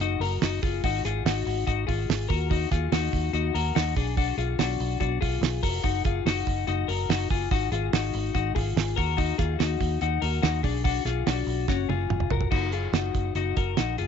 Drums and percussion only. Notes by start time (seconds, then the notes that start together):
0.00 hi-hat pedal, open hi-hat
0.21 hi-hat pedal, open hi-hat
0.42 snare, hi-hat pedal, open hi-hat
0.63 kick, hi-hat pedal, open hi-hat
0.84 kick, hi-hat pedal, open hi-hat
1.05 snare, hi-hat pedal, open hi-hat
1.26 snare, hi-hat pedal, open hi-hat
1.47 hi-hat pedal, open hi-hat
1.67 kick, hi-hat pedal, open hi-hat
1.89 kick, hi-hat pedal, open hi-hat
2.10 snare, hi-hat pedal, open hi-hat
2.30 kick, hi-hat pedal, open hi-hat
2.51 kick, hi-hat pedal, open hi-hat
2.71 kick, snare, hi-hat pedal, open hi-hat
2.92 snare, hi-hat pedal, open hi-hat
3.13 kick, hi-hat pedal, open hi-hat
3.34 hi-hat pedal, open hi-hat
3.55 hi-hat pedal, open hi-hat
3.76 snare, hi-hat pedal, open hi-hat
3.96 kick, hi-hat pedal, open hi-hat
4.17 kick, hi-hat pedal, open hi-hat
4.38 hi-hat pedal, open hi-hat
4.59 snare, hi-hat pedal, open hi-hat
4.80 hi-hat pedal, open hi-hat
5.00 kick, hi-hat pedal, open hi-hat
5.22 kick, hi-hat pedal, open hi-hat
5.43 snare, hi-hat pedal, open hi-hat
5.63 kick, hi-hat pedal, open hi-hat
5.84 kick, hi-hat pedal, open hi-hat
6.05 kick, hi-hat pedal, open hi-hat
6.26 snare, hi-hat pedal, open hi-hat
6.47 kick, hi-hat pedal, open hi-hat
6.67 hi-hat pedal, open hi-hat
6.89 hi-hat pedal, open hi-hat
7.10 snare, hi-hat pedal, open hi-hat
7.30 kick, hi-hat pedal, open hi-hat
7.51 kick, hi-hat pedal, open hi-hat
7.72 hi-hat pedal, open hi-hat
7.93 snare, hi-hat pedal, open hi-hat
8.13 hi-hat pedal, open hi-hat
8.35 kick, hi-hat pedal, open hi-hat
8.56 kick, hi-hat pedal, open hi-hat
8.77 snare, hi-hat pedal, open hi-hat
8.98 kick, hi-hat pedal, open hi-hat
9.18 kick, hi-hat pedal, open hi-hat
9.38 kick, snare, hi-hat pedal, open hi-hat
9.60 snare, hi-hat pedal, open hi-hat
9.81 kick, hi-hat pedal, open hi-hat
10.01 hi-hat pedal, open hi-hat
10.22 hi-hat pedal, open hi-hat
10.43 snare, hi-hat pedal, open hi-hat
10.64 kick, hi-hat pedal, open hi-hat
10.85 kick, hi-hat pedal, open hi-hat
11.06 snare, hi-hat pedal, open hi-hat
11.26 snare, hi-hat pedal, open hi-hat
11.48 hi-hat pedal, open hi-hat
11.68 kick, snare
11.90 high tom
12.10 mid tom
12.20 mid tom
12.31 floor tom
12.41 floor tom
12.51 kick, crash
12.72 closed hi-hat
12.94 snare, closed hi-hat
13.15 kick, closed hi-hat
13.35 closed hi-hat
13.57 kick, closed hi-hat
13.77 snare, closed hi-hat
13.98 closed hi-hat